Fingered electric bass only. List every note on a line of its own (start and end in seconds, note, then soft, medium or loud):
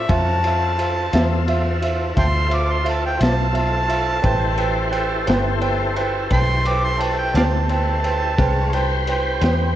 0.09 1.10 F2 medium
1.13 2.14 E2 medium
2.17 3.17 D2 medium
3.21 4.21 B1 medium
4.24 5.24 A1 medium
5.28 6.28 G1 medium
6.31 7.32 B1 medium
7.34 8.35 D2 medium
8.38 9.39 C2 medium
9.42 9.76 E2 medium